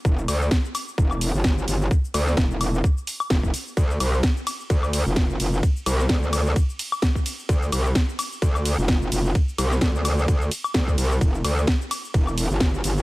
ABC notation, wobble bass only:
X:1
M:4/4
L:1/16
Q:"Swing 16ths" 1/4=129
K:Ddor
V:1 name="Wobble bass" clef=bass
E,,,2 D,,2 z4 E,,,3 G,,,3 G,,,2 | z2 D,,2 E,,,4 z4 F,,, E,,, z2 | D,,2 C,,2 z4 D,,3 F,,,3 F,,,2 | z2 C,,2 D,,4 z8 |
D,,2 C,,2 z4 D,,3 F,,,3 F,,,2 | z2 C,,2 D,,4 D,,2 z2 D,,2 C,,2 | E,,,2 D,,2 z4 E,,,3 G,,,3 G,,,2 |]